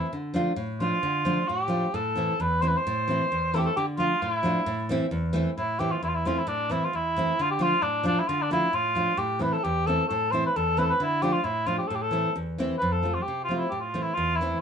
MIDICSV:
0, 0, Header, 1, 3, 480
1, 0, Start_track
1, 0, Key_signature, 0, "minor"
1, 0, Tempo, 452830
1, 145, Time_signature, 2, 2, 24, 8
1, 15492, End_track
2, 0, Start_track
2, 0, Title_t, "Cor anglais"
2, 0, Program_c, 0, 69
2, 0, Note_on_c, 0, 64, 79
2, 139, Note_off_c, 0, 64, 0
2, 856, Note_on_c, 0, 65, 105
2, 1570, Note_on_c, 0, 67, 91
2, 1586, Note_off_c, 0, 65, 0
2, 2061, Note_on_c, 0, 69, 89
2, 2077, Note_off_c, 0, 67, 0
2, 2553, Note_on_c, 0, 71, 103
2, 2569, Note_off_c, 0, 69, 0
2, 2773, Note_on_c, 0, 72, 98
2, 2789, Note_off_c, 0, 71, 0
2, 2839, Note_on_c, 0, 71, 101
2, 2855, Note_off_c, 0, 72, 0
2, 2938, Note_on_c, 0, 72, 103
2, 2954, Note_off_c, 0, 71, 0
2, 3761, Note_on_c, 0, 69, 96
2, 3777, Note_off_c, 0, 72, 0
2, 3795, Note_on_c, 0, 67, 85
2, 3811, Note_off_c, 0, 69, 0
2, 3874, Note_on_c, 0, 69, 90
2, 3890, Note_off_c, 0, 67, 0
2, 3983, Note_off_c, 0, 69, 0
2, 3989, Note_on_c, 0, 67, 96
2, 4094, Note_off_c, 0, 67, 0
2, 4221, Note_on_c, 0, 65, 104
2, 4474, Note_on_c, 0, 64, 97
2, 4490, Note_off_c, 0, 65, 0
2, 5183, Note_off_c, 0, 64, 0
2, 5913, Note_on_c, 0, 64, 90
2, 6141, Note_on_c, 0, 67, 100
2, 6157, Note_off_c, 0, 64, 0
2, 6274, Note_on_c, 0, 65, 73
2, 6289, Note_off_c, 0, 67, 0
2, 6380, Note_off_c, 0, 65, 0
2, 6397, Note_on_c, 0, 64, 92
2, 6448, Note_on_c, 0, 65, 84
2, 6464, Note_off_c, 0, 64, 0
2, 6518, Note_on_c, 0, 64, 80
2, 6533, Note_off_c, 0, 65, 0
2, 6644, Note_on_c, 0, 65, 93
2, 6660, Note_off_c, 0, 64, 0
2, 6768, Note_on_c, 0, 64, 76
2, 6784, Note_off_c, 0, 65, 0
2, 6872, Note_on_c, 0, 62, 93
2, 6888, Note_off_c, 0, 64, 0
2, 7121, Note_on_c, 0, 64, 85
2, 7137, Note_off_c, 0, 62, 0
2, 7253, Note_on_c, 0, 65, 85
2, 7269, Note_off_c, 0, 64, 0
2, 7374, Note_on_c, 0, 64, 97
2, 7390, Note_off_c, 0, 65, 0
2, 7862, Note_on_c, 0, 65, 105
2, 7878, Note_off_c, 0, 64, 0
2, 7954, Note_off_c, 0, 65, 0
2, 7960, Note_on_c, 0, 67, 91
2, 8085, Note_on_c, 0, 65, 106
2, 8101, Note_off_c, 0, 67, 0
2, 8295, Note_on_c, 0, 62, 94
2, 8311, Note_off_c, 0, 65, 0
2, 8534, Note_off_c, 0, 62, 0
2, 8553, Note_on_c, 0, 62, 96
2, 8685, Note_on_c, 0, 64, 73
2, 8701, Note_off_c, 0, 62, 0
2, 8772, Note_on_c, 0, 65, 109
2, 8788, Note_off_c, 0, 64, 0
2, 8926, Note_on_c, 0, 62, 83
2, 8942, Note_off_c, 0, 65, 0
2, 9027, Note_off_c, 0, 62, 0
2, 9036, Note_on_c, 0, 64, 105
2, 9270, Note_on_c, 0, 65, 111
2, 9286, Note_off_c, 0, 64, 0
2, 9736, Note_on_c, 0, 67, 93
2, 9752, Note_off_c, 0, 65, 0
2, 9985, Note_on_c, 0, 71, 91
2, 10001, Note_off_c, 0, 67, 0
2, 10103, Note_on_c, 0, 69, 89
2, 10112, Note_off_c, 0, 71, 0
2, 10144, Note_off_c, 0, 69, 0
2, 10144, Note_on_c, 0, 69, 87
2, 10212, Note_on_c, 0, 67, 112
2, 10228, Note_off_c, 0, 69, 0
2, 10459, Note_on_c, 0, 69, 100
2, 10475, Note_off_c, 0, 67, 0
2, 10680, Note_off_c, 0, 69, 0
2, 10687, Note_on_c, 0, 69, 96
2, 10932, Note_on_c, 0, 72, 107
2, 10948, Note_off_c, 0, 69, 0
2, 11059, Note_off_c, 0, 72, 0
2, 11088, Note_on_c, 0, 71, 89
2, 11200, Note_on_c, 0, 69, 99
2, 11216, Note_off_c, 0, 71, 0
2, 11431, Note_on_c, 0, 71, 116
2, 11447, Note_off_c, 0, 69, 0
2, 11462, Note_on_c, 0, 69, 91
2, 11478, Note_off_c, 0, 71, 0
2, 11552, Note_on_c, 0, 71, 106
2, 11568, Note_off_c, 0, 69, 0
2, 11678, Note_on_c, 0, 64, 100
2, 11694, Note_off_c, 0, 71, 0
2, 11895, Note_on_c, 0, 67, 100
2, 11911, Note_off_c, 0, 64, 0
2, 12006, Note_on_c, 0, 65, 89
2, 12022, Note_off_c, 0, 67, 0
2, 12124, Note_on_c, 0, 64, 100
2, 12140, Note_off_c, 0, 65, 0
2, 12366, Note_on_c, 0, 65, 102
2, 12382, Note_off_c, 0, 64, 0
2, 12483, Note_off_c, 0, 65, 0
2, 12489, Note_on_c, 0, 67, 73
2, 12587, Note_on_c, 0, 69, 88
2, 12603, Note_off_c, 0, 67, 0
2, 12665, Note_on_c, 0, 67, 72
2, 12681, Note_off_c, 0, 69, 0
2, 12740, Note_on_c, 0, 69, 109
2, 12756, Note_off_c, 0, 67, 0
2, 13084, Note_off_c, 0, 69, 0
2, 13546, Note_on_c, 0, 71, 101
2, 13697, Note_on_c, 0, 69, 85
2, 13713, Note_off_c, 0, 71, 0
2, 13930, Note_on_c, 0, 65, 76
2, 13945, Note_off_c, 0, 69, 0
2, 14016, Note_on_c, 0, 67, 100
2, 14032, Note_off_c, 0, 65, 0
2, 14240, Note_off_c, 0, 67, 0
2, 14246, Note_on_c, 0, 65, 96
2, 14361, Note_off_c, 0, 65, 0
2, 14361, Note_on_c, 0, 65, 66
2, 14389, Note_on_c, 0, 64, 81
2, 14405, Note_off_c, 0, 65, 0
2, 14517, Note_on_c, 0, 67, 86
2, 14533, Note_off_c, 0, 64, 0
2, 14622, Note_off_c, 0, 67, 0
2, 14628, Note_on_c, 0, 65, 88
2, 14866, Note_on_c, 0, 64, 88
2, 14882, Note_off_c, 0, 65, 0
2, 14987, Note_on_c, 0, 65, 106
2, 15003, Note_off_c, 0, 64, 0
2, 15219, Note_on_c, 0, 64, 87
2, 15235, Note_off_c, 0, 65, 0
2, 15466, Note_off_c, 0, 64, 0
2, 15492, End_track
3, 0, Start_track
3, 0, Title_t, "Nylon-string guitar"
3, 0, Program_c, 1, 24
3, 134, Note_on_c, 1, 50, 67
3, 357, Note_on_c, 1, 53, 80
3, 365, Note_on_c, 1, 62, 62
3, 371, Note_on_c, 1, 57, 60
3, 380, Note_on_c, 1, 65, 77
3, 500, Note_off_c, 1, 50, 0
3, 542, Note_off_c, 1, 53, 0
3, 546, Note_off_c, 1, 62, 0
3, 549, Note_off_c, 1, 57, 0
3, 553, Note_off_c, 1, 65, 0
3, 598, Note_on_c, 1, 45, 88
3, 851, Note_on_c, 1, 53, 66
3, 852, Note_on_c, 1, 57, 56
3, 855, Note_on_c, 1, 62, 51
3, 870, Note_on_c, 1, 65, 62
3, 970, Note_off_c, 1, 45, 0
3, 1027, Note_off_c, 1, 57, 0
3, 1029, Note_off_c, 1, 53, 0
3, 1030, Note_off_c, 1, 62, 0
3, 1038, Note_off_c, 1, 65, 0
3, 1091, Note_on_c, 1, 50, 78
3, 1324, Note_on_c, 1, 53, 70
3, 1328, Note_on_c, 1, 57, 55
3, 1334, Note_on_c, 1, 62, 61
3, 1339, Note_on_c, 1, 65, 74
3, 1457, Note_off_c, 1, 50, 0
3, 1506, Note_off_c, 1, 53, 0
3, 1506, Note_off_c, 1, 57, 0
3, 1508, Note_off_c, 1, 62, 0
3, 1508, Note_off_c, 1, 65, 0
3, 1583, Note_on_c, 1, 45, 64
3, 1779, Note_on_c, 1, 53, 66
3, 1788, Note_on_c, 1, 57, 56
3, 1795, Note_on_c, 1, 62, 50
3, 1798, Note_on_c, 1, 65, 63
3, 1943, Note_off_c, 1, 45, 0
3, 1971, Note_off_c, 1, 53, 0
3, 1976, Note_off_c, 1, 57, 0
3, 1978, Note_off_c, 1, 62, 0
3, 1981, Note_off_c, 1, 65, 0
3, 2056, Note_on_c, 1, 45, 73
3, 2285, Note_on_c, 1, 52, 55
3, 2296, Note_on_c, 1, 57, 64
3, 2297, Note_on_c, 1, 60, 60
3, 2305, Note_on_c, 1, 64, 78
3, 2419, Note_off_c, 1, 45, 0
3, 2464, Note_off_c, 1, 52, 0
3, 2469, Note_off_c, 1, 60, 0
3, 2470, Note_off_c, 1, 57, 0
3, 2474, Note_off_c, 1, 64, 0
3, 2541, Note_on_c, 1, 40, 75
3, 2779, Note_on_c, 1, 52, 64
3, 2780, Note_on_c, 1, 57, 57
3, 2786, Note_on_c, 1, 60, 55
3, 2794, Note_on_c, 1, 64, 68
3, 2901, Note_off_c, 1, 40, 0
3, 2950, Note_off_c, 1, 52, 0
3, 2950, Note_off_c, 1, 57, 0
3, 2952, Note_off_c, 1, 60, 0
3, 2958, Note_off_c, 1, 64, 0
3, 3039, Note_on_c, 1, 45, 85
3, 3261, Note_on_c, 1, 52, 69
3, 3267, Note_on_c, 1, 57, 47
3, 3275, Note_on_c, 1, 60, 50
3, 3291, Note_on_c, 1, 64, 62
3, 3390, Note_off_c, 1, 45, 0
3, 3430, Note_off_c, 1, 52, 0
3, 3433, Note_off_c, 1, 57, 0
3, 3437, Note_off_c, 1, 60, 0
3, 3446, Note_off_c, 1, 64, 0
3, 3517, Note_on_c, 1, 40, 65
3, 3748, Note_on_c, 1, 52, 63
3, 3754, Note_on_c, 1, 57, 60
3, 3757, Note_on_c, 1, 60, 52
3, 3773, Note_on_c, 1, 64, 69
3, 3868, Note_off_c, 1, 40, 0
3, 3914, Note_off_c, 1, 52, 0
3, 3917, Note_off_c, 1, 57, 0
3, 3917, Note_off_c, 1, 60, 0
3, 3926, Note_off_c, 1, 64, 0
3, 3996, Note_on_c, 1, 50, 82
3, 4212, Note_on_c, 1, 53, 56
3, 4219, Note_on_c, 1, 57, 57
3, 4237, Note_on_c, 1, 62, 63
3, 4239, Note_on_c, 1, 65, 64
3, 4347, Note_off_c, 1, 50, 0
3, 4385, Note_off_c, 1, 53, 0
3, 4388, Note_off_c, 1, 57, 0
3, 4398, Note_off_c, 1, 62, 0
3, 4398, Note_off_c, 1, 65, 0
3, 4474, Note_on_c, 1, 45, 68
3, 4695, Note_on_c, 1, 53, 65
3, 4707, Note_on_c, 1, 57, 67
3, 4715, Note_on_c, 1, 62, 48
3, 4721, Note_on_c, 1, 65, 63
3, 4826, Note_off_c, 1, 45, 0
3, 4866, Note_off_c, 1, 53, 0
3, 4872, Note_off_c, 1, 57, 0
3, 4876, Note_off_c, 1, 62, 0
3, 4878, Note_off_c, 1, 65, 0
3, 4943, Note_on_c, 1, 45, 90
3, 5185, Note_on_c, 1, 52, 74
3, 5197, Note_on_c, 1, 57, 73
3, 5205, Note_on_c, 1, 60, 74
3, 5211, Note_on_c, 1, 64, 83
3, 5299, Note_off_c, 1, 45, 0
3, 5350, Note_off_c, 1, 52, 0
3, 5357, Note_off_c, 1, 57, 0
3, 5361, Note_off_c, 1, 60, 0
3, 5362, Note_off_c, 1, 64, 0
3, 5418, Note_on_c, 1, 40, 85
3, 5648, Note_on_c, 1, 52, 90
3, 5657, Note_on_c, 1, 57, 70
3, 5662, Note_on_c, 1, 60, 67
3, 5677, Note_on_c, 1, 64, 76
3, 5776, Note_off_c, 1, 40, 0
3, 5822, Note_off_c, 1, 52, 0
3, 5827, Note_off_c, 1, 57, 0
3, 5827, Note_off_c, 1, 60, 0
3, 5836, Note_off_c, 1, 64, 0
3, 5910, Note_on_c, 1, 45, 72
3, 6138, Note_on_c, 1, 52, 54
3, 6144, Note_on_c, 1, 57, 49
3, 6151, Note_on_c, 1, 60, 57
3, 6154, Note_on_c, 1, 64, 71
3, 6263, Note_off_c, 1, 45, 0
3, 6307, Note_off_c, 1, 52, 0
3, 6308, Note_off_c, 1, 57, 0
3, 6313, Note_off_c, 1, 60, 0
3, 6314, Note_off_c, 1, 64, 0
3, 6387, Note_on_c, 1, 40, 62
3, 6629, Note_on_c, 1, 52, 66
3, 6637, Note_on_c, 1, 57, 60
3, 6637, Note_on_c, 1, 60, 60
3, 6647, Note_on_c, 1, 64, 73
3, 6741, Note_off_c, 1, 40, 0
3, 6791, Note_off_c, 1, 52, 0
3, 6795, Note_off_c, 1, 60, 0
3, 6796, Note_off_c, 1, 57, 0
3, 6801, Note_off_c, 1, 64, 0
3, 6856, Note_on_c, 1, 45, 78
3, 7098, Note_on_c, 1, 52, 59
3, 7109, Note_on_c, 1, 57, 60
3, 7113, Note_on_c, 1, 60, 51
3, 7121, Note_on_c, 1, 64, 69
3, 7215, Note_off_c, 1, 45, 0
3, 7266, Note_off_c, 1, 52, 0
3, 7272, Note_off_c, 1, 57, 0
3, 7272, Note_off_c, 1, 60, 0
3, 7278, Note_off_c, 1, 64, 0
3, 7348, Note_on_c, 1, 40, 56
3, 7595, Note_on_c, 1, 52, 68
3, 7607, Note_on_c, 1, 57, 59
3, 7607, Note_on_c, 1, 60, 56
3, 7618, Note_on_c, 1, 64, 67
3, 7702, Note_off_c, 1, 40, 0
3, 7754, Note_off_c, 1, 52, 0
3, 7760, Note_off_c, 1, 60, 0
3, 7761, Note_off_c, 1, 57, 0
3, 7766, Note_off_c, 1, 64, 0
3, 7837, Note_on_c, 1, 50, 76
3, 8044, Note_on_c, 1, 53, 73
3, 8049, Note_on_c, 1, 57, 54
3, 8060, Note_on_c, 1, 62, 61
3, 8065, Note_on_c, 1, 65, 70
3, 8186, Note_off_c, 1, 50, 0
3, 8219, Note_off_c, 1, 53, 0
3, 8222, Note_off_c, 1, 57, 0
3, 8227, Note_off_c, 1, 62, 0
3, 8230, Note_off_c, 1, 65, 0
3, 8291, Note_on_c, 1, 45, 60
3, 8516, Note_on_c, 1, 53, 73
3, 8525, Note_on_c, 1, 57, 59
3, 8527, Note_on_c, 1, 62, 58
3, 8538, Note_on_c, 1, 65, 74
3, 8653, Note_off_c, 1, 45, 0
3, 8695, Note_off_c, 1, 53, 0
3, 8700, Note_off_c, 1, 57, 0
3, 8700, Note_off_c, 1, 62, 0
3, 8706, Note_off_c, 1, 65, 0
3, 8787, Note_on_c, 1, 50, 83
3, 9016, Note_on_c, 1, 57, 54
3, 9022, Note_on_c, 1, 53, 63
3, 9025, Note_on_c, 1, 62, 62
3, 9039, Note_on_c, 1, 65, 68
3, 9141, Note_off_c, 1, 50, 0
3, 9186, Note_off_c, 1, 57, 0
3, 9189, Note_off_c, 1, 53, 0
3, 9190, Note_off_c, 1, 62, 0
3, 9197, Note_off_c, 1, 65, 0
3, 9254, Note_on_c, 1, 45, 62
3, 9488, Note_on_c, 1, 53, 50
3, 9492, Note_on_c, 1, 57, 50
3, 9500, Note_on_c, 1, 62, 63
3, 9502, Note_on_c, 1, 65, 64
3, 9615, Note_off_c, 1, 45, 0
3, 9662, Note_off_c, 1, 57, 0
3, 9663, Note_off_c, 1, 53, 0
3, 9668, Note_off_c, 1, 62, 0
3, 9668, Note_off_c, 1, 65, 0
3, 9724, Note_on_c, 1, 45, 76
3, 9956, Note_on_c, 1, 52, 66
3, 9965, Note_on_c, 1, 57, 51
3, 9966, Note_on_c, 1, 60, 61
3, 9980, Note_on_c, 1, 64, 59
3, 10090, Note_off_c, 1, 45, 0
3, 10136, Note_off_c, 1, 52, 0
3, 10140, Note_off_c, 1, 60, 0
3, 10141, Note_off_c, 1, 57, 0
3, 10148, Note_off_c, 1, 64, 0
3, 10224, Note_on_c, 1, 40, 69
3, 10464, Note_on_c, 1, 52, 58
3, 10470, Note_on_c, 1, 57, 57
3, 10478, Note_on_c, 1, 60, 57
3, 10488, Note_on_c, 1, 64, 56
3, 10581, Note_off_c, 1, 40, 0
3, 10630, Note_off_c, 1, 52, 0
3, 10634, Note_off_c, 1, 57, 0
3, 10638, Note_off_c, 1, 60, 0
3, 10642, Note_off_c, 1, 64, 0
3, 10711, Note_on_c, 1, 45, 84
3, 10945, Note_on_c, 1, 52, 53
3, 10953, Note_on_c, 1, 57, 54
3, 10956, Note_on_c, 1, 60, 58
3, 10964, Note_on_c, 1, 64, 62
3, 11065, Note_off_c, 1, 45, 0
3, 11111, Note_off_c, 1, 52, 0
3, 11115, Note_off_c, 1, 57, 0
3, 11116, Note_off_c, 1, 60, 0
3, 11121, Note_off_c, 1, 64, 0
3, 11196, Note_on_c, 1, 40, 72
3, 11416, Note_on_c, 1, 52, 63
3, 11424, Note_on_c, 1, 57, 54
3, 11430, Note_on_c, 1, 60, 56
3, 11439, Note_on_c, 1, 64, 57
3, 11548, Note_off_c, 1, 40, 0
3, 11587, Note_off_c, 1, 52, 0
3, 11592, Note_off_c, 1, 57, 0
3, 11593, Note_off_c, 1, 60, 0
3, 11599, Note_off_c, 1, 64, 0
3, 11660, Note_on_c, 1, 50, 83
3, 11894, Note_on_c, 1, 53, 66
3, 11900, Note_on_c, 1, 57, 61
3, 11904, Note_on_c, 1, 62, 66
3, 11912, Note_on_c, 1, 65, 68
3, 12020, Note_off_c, 1, 50, 0
3, 12067, Note_off_c, 1, 53, 0
3, 12070, Note_off_c, 1, 57, 0
3, 12072, Note_off_c, 1, 62, 0
3, 12076, Note_off_c, 1, 65, 0
3, 12126, Note_on_c, 1, 45, 69
3, 12364, Note_on_c, 1, 53, 60
3, 12364, Note_on_c, 1, 57, 55
3, 12367, Note_on_c, 1, 62, 57
3, 12379, Note_on_c, 1, 65, 60
3, 12493, Note_off_c, 1, 45, 0
3, 12542, Note_off_c, 1, 57, 0
3, 12543, Note_off_c, 1, 53, 0
3, 12544, Note_off_c, 1, 62, 0
3, 12550, Note_off_c, 1, 65, 0
3, 12618, Note_on_c, 1, 45, 79
3, 12835, Note_on_c, 1, 52, 58
3, 12852, Note_on_c, 1, 57, 59
3, 12855, Note_on_c, 1, 60, 57
3, 12857, Note_on_c, 1, 64, 64
3, 12980, Note_off_c, 1, 45, 0
3, 13019, Note_off_c, 1, 52, 0
3, 13027, Note_off_c, 1, 60, 0
3, 13028, Note_off_c, 1, 57, 0
3, 13030, Note_off_c, 1, 64, 0
3, 13097, Note_on_c, 1, 40, 70
3, 13339, Note_on_c, 1, 52, 70
3, 13344, Note_on_c, 1, 57, 59
3, 13351, Note_on_c, 1, 60, 66
3, 13356, Note_on_c, 1, 64, 84
3, 13461, Note_off_c, 1, 40, 0
3, 13512, Note_off_c, 1, 52, 0
3, 13514, Note_off_c, 1, 57, 0
3, 13518, Note_off_c, 1, 60, 0
3, 13520, Note_off_c, 1, 64, 0
3, 13586, Note_on_c, 1, 41, 77
3, 13808, Note_on_c, 1, 53, 48
3, 13817, Note_on_c, 1, 57, 49
3, 13825, Note_on_c, 1, 60, 48
3, 13835, Note_on_c, 1, 65, 63
3, 13947, Note_off_c, 1, 41, 0
3, 13987, Note_off_c, 1, 53, 0
3, 13992, Note_off_c, 1, 57, 0
3, 13996, Note_off_c, 1, 60, 0
3, 14001, Note_off_c, 1, 65, 0
3, 14075, Note_on_c, 1, 48, 60
3, 14295, Note_on_c, 1, 53, 54
3, 14316, Note_on_c, 1, 57, 52
3, 14317, Note_on_c, 1, 60, 44
3, 14323, Note_on_c, 1, 65, 63
3, 14432, Note_off_c, 1, 48, 0
3, 14472, Note_off_c, 1, 53, 0
3, 14482, Note_off_c, 1, 60, 0
3, 14483, Note_off_c, 1, 57, 0
3, 14486, Note_off_c, 1, 65, 0
3, 14542, Note_on_c, 1, 45, 66
3, 14776, Note_on_c, 1, 52, 59
3, 14784, Note_on_c, 1, 57, 55
3, 14789, Note_on_c, 1, 60, 49
3, 14789, Note_on_c, 1, 64, 63
3, 14906, Note_off_c, 1, 45, 0
3, 14953, Note_off_c, 1, 52, 0
3, 14958, Note_off_c, 1, 57, 0
3, 14959, Note_off_c, 1, 60, 0
3, 14960, Note_off_c, 1, 64, 0
3, 15024, Note_on_c, 1, 40, 69
3, 15273, Note_on_c, 1, 52, 62
3, 15281, Note_on_c, 1, 57, 55
3, 15284, Note_on_c, 1, 60, 59
3, 15290, Note_on_c, 1, 64, 69
3, 15389, Note_off_c, 1, 40, 0
3, 15444, Note_off_c, 1, 52, 0
3, 15445, Note_off_c, 1, 57, 0
3, 15449, Note_off_c, 1, 60, 0
3, 15452, Note_off_c, 1, 64, 0
3, 15492, End_track
0, 0, End_of_file